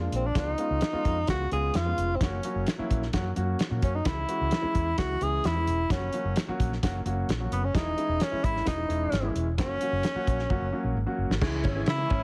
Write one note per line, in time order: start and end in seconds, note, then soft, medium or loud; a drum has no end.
0.00 0.23 G#3 medium
0.00 0.23 A#3 medium
0.00 0.23 D4 medium
0.00 0.23 F4 medium
0.12 0.30 A#1 medium
0.12 0.28 C4 medium
0.12 closed hi-hat medium
0.26 0.40 D4 medium
0.35 0.53 C#2 loud
0.35 0.51 G#3 medium
0.35 0.51 B3 medium
0.35 0.51 C#4 medium
0.35 1.29 D#4 loud
0.35 0.51 F4 medium
0.35 kick loud
0.35 snare loud
0.35 closed hi-hat loud
0.58 0.81 G#3 medium
0.58 0.81 B3 medium
0.58 0.82 C#4 medium
0.58 0.82 F4 medium
0.58 closed hi-hat medium
0.70 0.79 C#2 medium
0.81 snare loud
0.81 closed hi-hat medium
0.93 1.16 G#3 medium
0.93 1.16 B3 medium
0.93 1.16 C#4 medium
0.93 1.16 F4 loud
0.93 muted fingered electric bass stroke soft
1.05 1.23 F2 medium
1.05 kick medium
1.05 closed hi-hat medium
1.27 1.46 C#2 medium
1.27 1.43 G#3 medium
1.27 1.43 B3 medium
1.27 1.43 C#4 medium
1.27 1.43 F4 medium
1.27 1.51 F#4 medium
1.27 kick medium
1.27 snare medium
1.27 closed hi-hat medium
1.51 1.69 C#2 medium
1.51 1.74 G#3 medium
1.51 1.75 B3 medium
1.51 1.74 C#4 medium
1.51 1.75 F4 medium
1.51 1.78 G#4 medium
1.51 closed hi-hat medium
1.74 1.92 F2 medium
1.74 2.17 F4 medium
1.74 snare medium
1.74 closed hi-hat medium
1.86 2.09 G#3 medium
1.86 2.09 B3 medium
1.86 2.09 C#4 medium
1.86 2.09 F4 medium
1.98 2.15 F1 medium
1.98 closed hi-hat medium
2.16 2.24 C4 medium
2.21 2.38 F#1 medium
2.21 2.36 F#3 medium
2.21 2.36 A#3 medium
2.21 2.36 C#4 medium
2.21 2.68 C#4 medium
2.21 2.37 F#4 medium
2.21 kick loud
2.21 snare loud
2.21 closed hi-hat medium
2.43 2.67 F#3 medium
2.43 2.67 A#3 medium
2.43 2.67 C#4 medium
2.43 2.67 F#4 medium
2.43 closed hi-hat medium
2.55 2.64 F#1 medium
2.67 snare loud
2.67 closed hi-hat medium
2.79 3.02 F#3 medium
2.79 3.02 A#3 medium
2.79 3.02 C#4 medium
2.79 3.02 E4 medium
2.79 muted fingered electric bass stroke soft
2.91 3.08 A#1 medium
2.91 kick medium
2.91 closed hi-hat medium
3.02 snare soft
3.13 3.31 F#2 medium
3.13 3.29 F#3 medium
3.13 3.29 A#3 medium
3.13 3.29 C#4 medium
3.13 3.29 F#4 medium
3.13 kick medium
3.13 snare loud
3.13 closed hi-hat medium
3.36 3.54 F#2 medium
3.36 3.59 F#3 medium
3.36 3.59 A#3 medium
3.36 3.59 C#4 medium
3.36 3.59 F#4 medium
3.36 closed hi-hat medium
3.59 muted fingered electric bass stroke soft
3.59 snare medium
3.59 closed hi-hat medium
3.71 3.80 A#2 medium
3.71 3.94 F#3 medium
3.71 3.94 A#3 medium
3.71 3.94 C#4 medium
3.71 3.94 F#4 medium
3.82 4.00 F#2 medium
3.82 3.97 C#4 medium
3.82 kick medium
3.82 closed hi-hat medium
3.95 4.08 D#4 medium
4.05 4.23 C#2 medium
4.05 4.21 E3 medium
4.05 4.21 G#3 medium
4.05 4.21 C#4 medium
4.05 4.21 E4 medium
4.05 4.98 E4 loud
4.05 kick loud
4.05 snare loud
4.05 closed hi-hat loud
4.29 4.52 E3 medium
4.29 4.52 G#3 medium
4.29 4.52 C#4 medium
4.29 4.52 F#4 medium
4.29 closed hi-hat medium
4.41 4.49 C#2 medium
4.51 snare loud
4.51 closed hi-hat medium
4.62 4.86 E3 medium
4.62 4.86 G#3 medium
4.62 4.86 C#4 medium
4.62 4.86 E4 medium
4.62 muted fingered electric bass stroke soft
4.75 4.92 E2 medium
4.75 kick medium
4.75 closed hi-hat medium
4.98 5.16 C#2 medium
4.98 5.13 E3 medium
4.98 5.13 G#3 medium
4.98 5.13 C#4 medium
4.98 5.13 E4 medium
4.98 5.24 F#4 medium
4.98 kick medium
4.98 snare medium
4.98 closed hi-hat medium
5.21 5.39 C#2 medium
5.21 5.44 E3 medium
5.21 5.44 G#3 medium
5.21 5.44 C#4 medium
5.21 5.44 E4 medium
5.21 5.47 G#4 loud
5.21 closed hi-hat medium
5.44 5.69 E2 medium
5.44 5.93 E4 medium
5.44 snare medium
5.44 closed hi-hat medium
5.55 5.78 E3 medium
5.55 5.79 G#3 medium
5.55 5.79 C#4 medium
5.55 5.79 E4 medium
5.67 5.85 E1 medium
5.67 closed hi-hat medium
5.90 6.08 F#1 medium
5.90 6.05 F#3 medium
5.90 6.05 A#3 medium
5.90 6.05 C#4 medium
5.90 6.37 C#4 medium
5.90 6.05 F#4 medium
5.90 kick loud
5.90 snare loud
5.90 closed hi-hat medium
6.13 6.36 F#3 medium
6.13 6.36 A#3 medium
6.13 6.36 C#4 medium
6.13 6.36 F#4 medium
6.13 closed hi-hat medium
6.25 6.34 F#1 medium
6.36 snare loud
6.36 closed hi-hat medium
6.48 6.71 F#3 medium
6.48 6.71 A#3 medium
6.48 6.71 C#4 medium
6.48 6.71 F#4 loud
6.48 muted fingered electric bass stroke soft
6.60 6.77 A#1 loud
6.60 kick medium
6.60 closed hi-hat medium
6.73 snare soft
6.83 7.00 F#1 medium
6.83 6.98 F#3 medium
6.83 6.98 A#3 medium
6.83 6.98 C#4 medium
6.83 6.98 F#4 medium
6.83 kick medium
6.83 snare medium
6.83 closed hi-hat medium
7.05 7.23 F#1 medium
7.05 7.28 F#3 medium
7.05 7.28 A#3 medium
7.05 7.28 C#4 medium
7.05 7.28 F#4 medium
7.05 closed hi-hat medium
7.28 7.46 A#1 medium
7.28 snare medium
7.28 closed hi-hat medium
7.40 7.63 F#3 medium
7.40 7.63 A#3 medium
7.40 7.63 C#4 medium
7.40 7.63 F#4 medium
7.51 7.69 F#1 medium
7.51 7.66 B3 medium
7.51 closed hi-hat medium
7.64 7.77 C#4 medium
7.74 7.92 E1 medium
7.74 7.90 E3 medium
7.74 7.90 G#3 medium
7.74 7.90 C#4 medium
7.74 8.24 D#4 medium
7.74 7.90 E4 medium
7.74 kick loud
7.74 snare loud
7.74 closed hi-hat medium
7.97 8.20 E3 medium
7.97 8.20 G#3 medium
7.97 8.20 C#4 medium
7.97 8.20 E4 medium
7.97 closed hi-hat medium
8.09 8.18 E1 medium
8.20 8.46 C#4 loud
8.20 snare loud
8.20 closed hi-hat medium
8.31 8.55 E3 medium
8.31 8.55 G#3 medium
8.31 8.55 C#4 medium
8.31 8.55 E4 medium
8.31 muted fingered electric bass stroke soft
8.44 8.61 G#1 medium
8.44 8.67 E4 medium
8.44 kick medium
8.44 closed hi-hat medium
8.57 snare soft
8.65 8.84 E1 medium
8.65 8.81 E3 medium
8.65 8.81 G#3 medium
8.65 8.82 C#4 medium
8.65 9.32 D#4 medium
8.65 8.81 E4 medium
8.65 kick medium
8.65 snare loud
8.65 closed hi-hat medium
8.88 9.07 E1 medium
8.88 9.12 E3 medium
8.88 9.12 G#3 medium
8.88 9.12 C#4 medium
8.88 9.12 E4 medium
8.88 closed hi-hat medium
9.12 9.30 G#1 medium
9.12 snare medium
9.12 closed hi-hat medium
9.22 9.46 E3 medium
9.22 9.46 G#3 medium
9.22 9.46 C#4 medium
9.22 9.46 E4 medium
9.35 9.58 E1 medium
9.35 closed hi-hat medium
9.58 9.76 F#1 medium
9.58 9.73 F#3 medium
9.58 9.73 A#3 medium
9.58 9.74 C#4 medium
9.58 10.93 C#4 loud
9.58 9.74 F#4 medium
9.58 kick loud
9.58 snare loud
9.58 closed hi-hat loud
9.81 10.04 F#3 medium
9.81 10.04 A#3 medium
9.81 10.05 C#4 medium
9.81 10.05 F#4 medium
9.81 closed hi-hat medium
9.92 10.01 F#1 medium
10.03 snare medium
10.03 closed hi-hat medium
10.15 10.39 F#3 medium
10.15 10.39 A#3 medium
10.15 10.39 C#4 medium
10.15 10.39 F#4 medium
10.15 muted fingered electric bass stroke soft
10.27 10.45 A#1 medium
10.27 kick medium
10.27 closed hi-hat medium
10.39 snare soft
10.50 10.59 F#1 medium
10.50 10.65 F#3 medium
10.50 10.65 A#3 medium
10.50 10.65 C#4 medium
10.50 10.65 F#4 loud
10.50 kick medium
10.61 10.70 F#1 medium
10.72 10.96 F#3 medium
10.72 10.96 A#3 medium
10.72 10.96 C#4 medium
10.72 10.96 F#4 medium
10.84 10.93 A#1 medium
10.95 11.04 G#1 medium
11.06 11.30 F#3 medium
11.06 11.30 A#3 medium
11.06 11.30 C#4 medium
11.06 11.30 F#4 medium
11.18 11.27 F#1 medium
11.29 11.39 G#1 medium
11.29 snare medium
11.41 11.66 C#2 loud
11.41 11.65 E3 medium
11.41 11.65 G#3 medium
11.41 11.65 C#4 medium
11.41 11.65 E4 medium
11.41 11.65 G#4 medium
11.41 12.23 C#5 medium
11.41 12.23 E5 medium
11.41 12.23 G#5 medium
11.41 kick loud
11.41 snare loud
11.41 crash loud
11.64 11.82 G#1 medium
11.64 11.79 C#4 medium
11.64 kick medium
11.64 ride medium
11.76 11.91 E3 medium
11.76 11.91 G#3 medium
11.76 11.91 C#4 medium
11.76 11.91 E4 medium
11.76 11.91 G#4 medium
11.86 12.05 C#3 medium
11.86 12.23 E4 medium
11.86 12.23 E6 medium
11.86 snare loud
11.86 ride medium
11.98 12.21 E3 medium
11.98 12.22 G#3 medium
11.98 12.22 C#4 medium
11.98 12.22 E4 medium
11.98 12.22 G#4 medium
12.10 12.23 G#1 loud
12.10 12.23 C#4 medium
12.10 kick medium
12.10 ride soft